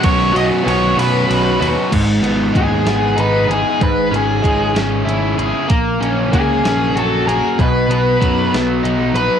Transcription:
<<
  \new Staff \with { instrumentName = "Lead electric guitar" } { \time 6/8 \key b \major \tempo 4. = 64 cis''8 dis''8 cis''8 b'4 r8 | r4 gis'4 b'8 gis'8 | b'8 gis'4 r4. | r4 gis'4 a'8 gis'8 |
b'8 b'4 r4 b'8 | }
  \new Staff \with { instrumentName = "Overdriven electric guitar" } { \time 6/8 \key b \major <b, fis b cis' fis'>8 <b, fis b cis' fis'>8 <b, fis b cis' fis'>8 <b, fis b cis' fis'>4 <b, fis b cis' fis'>8 | gis,8 b8 gis8 b8 dis'8 gis'8 | gis,8 cis'8 gis8 cis'8 e'8 gis'8 | ais8 cis'8 ais8 cis'8 fis'8 ais'8 |
b,8 b8 fis8 b8 dis'8 b'8 | }
  \new Staff \with { instrumentName = "Picked electric bass" } { \clef bass \time 6/8 \key b \major b,,8 b,,16 r16 b,,8 b,,8 b,,8 dis,16 r16 | gis,,8 gis,,8 dis,8 gis,,8 gis,,8 gis,,16 r16 | gis,,8 gis,,8 gis,,8 gis,,8 gis,,8 gis,,16 r16 | ais,,8 ais,,8 cis,8 ais,,8 ais,,8 ais,,16 r16 |
b,,8 b,,8 fis,8 b,,8 b,,8 ais,,16 r16 | }
  \new DrumStaff \with { instrumentName = "Drums" } \drummode { \time 6/8 <bd cymr>8 cymr8 cymr8 cymr8 cymr8 cymr8 | <cymc hh bd>8 hh8 <hh bd>8 <hh sn>8 hh8 hh8 | <hh bd>8 hh8 <hh bd>8 <hh sn>8 hh8 hh8 | <hh bd>8 hh8 <hh bd>8 <hh sn>8 hh8 hh8 |
<hh bd>8 hh8 <hh bd>8 <hh sn>8 hh8 hh8 | }
>>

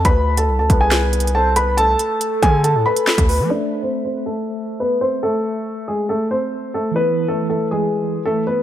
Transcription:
<<
  \new Staff \with { instrumentName = "Soft synth lead" } { \time 4/4 \key a \minor \tempo 4 = 139 r4. b'4. c''8 b'8 | a'2.~ a'8 b'8 | r1 | r1 |
r1 | }
  \new Staff \with { instrumentName = "Grand piano" } { \time 4/4 \key a \minor <b' b''>8. <a' a''>8 <a' a''>8 <gis' gis''>4~ <gis' gis''>16 <a' a''>8 <b' b''>8 | <a' a''>4. <gis' gis''>8 <a' a''>8 <b' b''>4. | <d' d''>8. <c' c''>8 <c' c''>8 <a a'>4~ <a a'>16 <b b'>8 <c' c''>8 | <a a'>4. <gis gis'>8 <a a'>8 <c' c''>4 <a a'>8 |
<b b'>8. <a a'>8 <a a'>8 <gis gis'>4~ <gis gis'>16 <a a'>8 <b b'>8 | }
  \new Staff \with { instrumentName = "Tine electric piano" } { \time 4/4 \key a \minor r1 | r1 | <a a' c'' e''>1~ | <a a' c'' e''>1 |
<e e' b'>1 | }
  \new Staff \with { instrumentName = "808-style bass" } { \clef bass \time 4/4 \key a \minor d,4 c,16 d,16 c,2~ c,8~ | c,8 r4 d8. a,16 r8. d,8 f16 | r1 | r1 |
r1 | }
  \new DrumStaff \with { instrumentName = "Drums" } \drummode { \time 4/4 <hh bd>8. hh16 r8 <hh bd>8 \tuplet 3/2 { <hc hh sn>16 r16 r16 hh16 hh16 hh16 } r8 <hh ss>8 | hh8 hh8 hh8 <hh bd>8 hh8. hh16 <hc sn>16 <hh bd>16 hho8 | r4 r4 r4 r4 | r4 r4 r4 r4 |
r4 r4 r4 r4 | }
>>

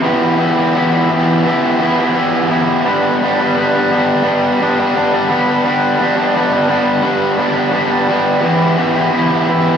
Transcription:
\new Staff \with { instrumentName = "Overdriven electric guitar" } { \time 4/4 \key e \minor \tempo 4 = 172 <e b e' g'>4 <e b e' g'>8 <b e' g'>8 <e b e' g'>8 <b e' g'>8 <e b e' g'>4 | <e b e' g'>4 <e b e' g'>8 <b e' g'>8 <e b e' g'>8 <b e' g'>8 <e b e' g'>4 | <g b d' g'>4 <g b d' g'>8 <b d' g'>8 <g b d' g'>8 <b d' g'>8 <g b d' g'>4 | <g b d' g'>4 <g b d' g'>8 <b d' g'>8 <g b d' g'>8 <b d' g'>8 <g b d' g'>4 |
<g b d' g'>4 <g b d' g'>8 <b d' g'>8 <g b d' g'>8 <b d' g'>8 <g b d' g'>4 | <g b d' g'>4 <g b d' g'>8 <b d' g'>8 <g b d' g'>8 <b d' g'>8 <g b d' g'>4 | <e b e' g'>4 <e b e' g'>8 <b e' g'>8 <e b e' g'>8 <b e' g'>8 <e b e' g'>4 | }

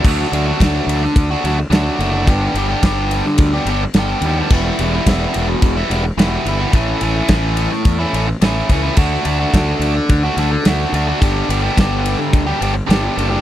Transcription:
<<
  \new Staff \with { instrumentName = "Overdriven electric guitar" } { \time 4/4 \key d \major \tempo 4 = 107 <d fis a d' fis'>8 <fis a d' fis'>16 <a d' fis'>16 <d fis a d' fis'>4~ <d fis a d' fis'>16 <a d' fis'>16 <fis a d' fis'>8 <d fis a d' fis'>8 <fis a d' fis'>16 <a d' fis'>16 | <g, d g b d' g'>8 <g b d' g'>16 <g b d' g'>16 <g, d g b d' g'>4~ <g, d g b d' g'>16 <g b d' g'>16 <g b d' g'>8 <g, d g b d' g'>8 <g b d' g'>16 <g b d' g'>16 | <e, b, e g b e'>8 <e g b e'>16 <e g b e'>16 <e, b, e g b e'>4~ <e, b, e g b e'>16 <e g b e'>16 <e g b e'>8 <e, b, e g b e'>8 <e g b e'>16 <e g b e'>16 | <a, e a cis' e'>8 <e a cis' e'>16 <a cis' e'>16 <a, e a cis' e'>4~ <a, e a cis' e'>16 <a cis' e'>16 <e a cis' e'>8 <a, e a cis' e'>8 <e a cis' e'>16 <a cis' e'>16 |
<d a d' fis'>8 <d a d' fis'>16 <a d' fis'>16 <d a d' fis'>4~ <d a d' fis'>16 <a d' fis'>16 <d a d' fis'>8 <d a d' fis'>8 <d a d' fis'>16 <a d' fis'>16 | <g, d g b d' g'>8 <g b d' g'>16 <g b d' g'>16 <g, d g b d' g'>4~ <g, d g b d' g'>16 <g b d' g'>16 <g b d' g'>8 <g, d g b d' g'>8 <g b d' g'>16 <g b d' g'>16 | }
  \new Staff \with { instrumentName = "Fingered electric bass" } { \clef bass \time 4/4 \key d \major d,8 d,8 d,8 d,8 d,8 d,8 d,8 fis,,8 | g,,8 g,,8 g,,4 d,8 g,,8 g,,8 dis,8 | e,,8 e,,8 e,,8 e,,8 e,,8 e,,8 e,,8 g,,8 | a,,8 a,,8 a,,4 e,8 a,,8 a,,8 cis,8 |
d,8 d,8 d,8 d,8 d,8 d,8 d,8 d,8 | g,,8 g,,8 g,,4 d,8 g,,8 g,,8 fis,,8 | }
  \new DrumStaff \with { instrumentName = "Drums" } \drummode { \time 4/4 <cymc bd>8 cymr8 <bd cymr sn>8 cymr16 sn16 <bd cymr>8 <cymr sn>8 <cymr sn>16 sn16 cymr8 | <bd cymr>8 cymr8 <bd cymr sn>8 cymr16 sn16 <bd cymr>8 <cymr sn>8 <cymr sn>16 sn16 cymr8 | <cymc bd>8 cymr8 <bd cymr sn>8 cymr8 <bd cymr>8 <cymr sn>8 <cymr sn>8 cymr8 | <bd cymr>8 cymr8 <bd cymr sn>8 cymr16 sn16 <bd cymr>8 cymr8 <cymr sn>16 sn16 <bd cymr>8 |
<cymc bd>8 cymr8 <bd cymr sn>8 cymr8 <bd cymr>8 <cymr sn>8 <cymr sn>16 sn16 cymr8 | <bd cymr>8 cymr8 <bd cymr sn>8 cymr8 <bd cymr>8 cymr8 <cymr sn>8 cymr8 | }
>>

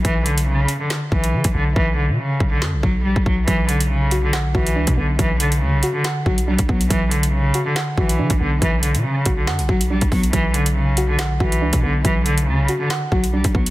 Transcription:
<<
  \new Staff \with { instrumentName = "Synth pluck" } { \time 4/4 \key b \minor \tempo 4 = 140 r1 | r1 | fis4. fis'8 fis''8 fis'8 d'8 b8 | fis4. fis'8 fis''8 fis'8 d'8 b8 |
fis4. fis'8 fis''8 fis'8 d'8 b8 | fis4. fis'8 fis''8 fis'8 d'8 b8 | fis4. fis'8 fis''8 fis'8 d'8 b8 | fis4. fis'8 fis''8 fis'8 d'8 b8 | }
  \new Staff \with { instrumentName = "Cello" } { \clef bass \time 4/4 \key b \minor e8 d8 cis8. d16 r8 e4 d8 | e8 d8 cis8. d16 r8 fis8 g8 fis8 | e8 d8 cis8. d16 r8 e4 d8 | e8 d8 cis8. d16 r8 fis8 g8 fis8 |
e8 d8 cis8. d16 r8 e4 d8 | e8 d8 cis8. d16 r8 fis8 g8 fis8 | e8 d8 cis8. d16 r8 e4 d8 | e8 d8 cis8. d16 r8 fis8 g8 fis8 | }
  \new Staff \with { instrumentName = "808-style bass" } { \clef bass \time 4/4 \key b \minor b,,4. r4 b,,8 d16 b,,16 b,,8 | b,,8. b,16 r8 b,,8 fis,16 b,,16 b,,8 ais,,16 b,,16 b,,8 | b,,2 ais,,16 b,,16 b,,8 cis,16 b,16 b,,8 | b,,4 d,16 b,,16 r4 b,,8. b,,16 b,,8 |
b,,4. r4 b,,8 d16 b,,16 b,,8 | b,,8. b,16 r8 b,,8 fis,16 b,,16 b,,8 ais,,16 b,,16 b,,8 | b,,2 ais,,16 b,,16 b,,8 cis,16 b,16 b,,8 | b,,4 d,16 b,,16 r4 b,,8. b,,16 b,,8 | }
  \new DrumStaff \with { instrumentName = "Drums" } \drummode { \time 4/4 <hh bd>8 hh16 hh16 r8 hh8 <hc hh sn>8 bd16 hh16 r16 <hh bd>8. | bd4 r8 bd8 <hc sn>8 bd8 r16 bd16 bd8 | <hh bd>8 hh16 hh16 r8 hh8 <hc hh sn>8 bd16 hh16 r16 <hh bd>8. | <hh bd>8 hh16 hh16 r8 hh8 <hc hh sn>8 bd16 hh16 r16 <hh bd>16 bd16 hh16 |
<hh bd>8 hh16 hh16 r8 hh8 <hc hh sn>8 bd16 hh16 r16 <hh bd>8. | <hh bd>8 hh16 hh16 r8 <hh bd>8 <hc hh sn>16 hh16 bd16 hh16 r16 <hh bd>16 <hho bd>16 hh16 | <hh bd>8 hh16 hh16 r8 hh8 <hc hh sn>8 bd16 hh16 r16 <hh bd>8. | <hh bd>8 hh16 hh16 r8 hh8 <hc hh sn>8 bd16 hh16 r16 <hh bd>16 bd16 hh16 | }
>>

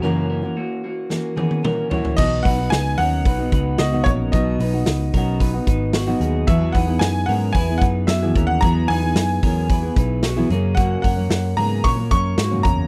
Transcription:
<<
  \new Staff \with { instrumentName = "Upright piano" } { \time 4/4 \key b \major \tempo 4 = 112 r1 | dis''8 fis''8 gis''8 fis''4. dis''8 cis''8 | dis''2. r4 | e''8 fis''8 gis''8 fis''8 gis''8 fis''8 e''8. fis''16 |
ais''8 gis''2 r4. | fis''8 fis''4 ais''8 cis'''8 cis'''4 ais''8 | }
  \new Staff \with { instrumentName = "Clean electric guitar" } { \time 4/4 \key b \major <cis' ais'>8 <cis' ais'>8 <ais fis'>8 <ais fis'>4 <b gis'>8 <cis' ais'>8 <e' cis''>8 | <b fis'>8 <dis' b'>4 <cis' ais'>8 <dis' b'>8 <dis' b'>8 <b fis'>8 <cis' ais'>8 | <b fis'>8 <dis' b'>4 <cis' ais'>8 <dis' b'>8 <dis' b'>8 <b fis'>8 <b gis'>8 | <b fis'>8 <dis' b'>4 <cis' ais'>8 <e' b'>8 <dis' b'>8 <b fis'>8 <cis' ais'>8 |
<b gis'>8 <dis' b'>4 <cis' ais'>8 <e' b'>8 <dis' b'>8 <b fis'>8 <cis' gis'>8 | <ais fis'>8 <cis' ais'>4 <b gis'>8 <cis' ais'>8 <cis' ais'>8 <ais fis'>8 <cis' ais'>8 | }
  \new Staff \with { instrumentName = "Steel-string acoustic guitar" } { \time 4/4 \key b \major <fis, cis e ais cis' fis'>8. <e ais cis' fis'>4~ <e ais cis' fis'>16 <e ais cis' fis'>8 <e ais cis' fis'>8 <e ais cis' fis'>8 <e ais cis' fis'>8 | <b, fis b dis' fis'>8. <b dis' fis'>8. <fis b dis' fis'>8. <b dis' fis'>4 <b, fis b dis' fis'>8. | <b, fis b dis' fis'>8. <b dis' fis'>8. <fis b dis' fis'>8. <b dis' fis'>4 <b, fis b dis' fis'>8. | <e fis b e' gis'>8. <b e' gis'>8. <fis b e' gis'>8. <b e' gis'>4 <e fis b e' gis'>8. |
<e fis b e' gis'>8. <b e' gis'>8. <fis b e' gis'>8. <b e' gis'>4 <e fis b e' gis'>16 <fis, cis fis ais cis'>8~ | <fis, cis fis ais cis'>8. <fis ais cis'>8. <cis fis ais cis'>8. <fis ais cis'>4 <fis, cis fis ais cis'>8. | }
  \new Staff \with { instrumentName = "Picked electric bass" } { \clef bass \time 4/4 \key b \major r1 | b,,8 b,,8 cis,8 dis,8 b,,8 cis,8 cis,8 ais,,8 | b,,8 b,,8 cis,8 b,,4 gis,,4 dis,8 | e,8 e,8 fis,8 gis,8 e,8 fis,8 fis,8 dis,8 |
e,8 e,8 fis,8 e,4 b,,4 fis,8~ | fis,8 fis,8 fis,8 gis,8 ais,8 fis,8 gis,8 e,8 | }
  \new DrumStaff \with { instrumentName = "Drums" } \drummode { \time 4/4 r4 r4 sn8 tommh16 tommh16 toml8 tomfh16 tomfh16 | <cymc bd>8 <hho hhp bd>8 <hho hhp sn>8 <hho hhp>8 <hho hhp bd>8 <hho hhp bd>8 <hho hhp sn>8 <hho hhp bd>8 | <hho hhp bd>8 <hho hhp>8 <hho hhp sn>8 <hho hhp bd>8 <hho hhp bd>8 <hho hhp bd>8 <hho hhp sn>8 <hho hhp>8 | <hho hhp bd>8 <hho hhp bd>8 <hho hhp sn>8 <hho hhp>8 <hho hhp bd>8 <hho hhp bd>8 <hho hhp sn>8 <hho hhp bd>8 |
<hho hhp bd>8 <hho hhp>8 <hho hhp sn>8 <hho hhp bd>8 <hho hhp bd>8 <hho hhp bd>8 <hho hhp sn>8 <hho hhp>8 | <hho hhp bd>8 <hho hhp bd>8 <hho hhp sn>8 <hho hhp>8 <hho hhp bd>8 <hho hhp bd>8 <hho hhp sn>8 <hho hhp bd>8 | }
>>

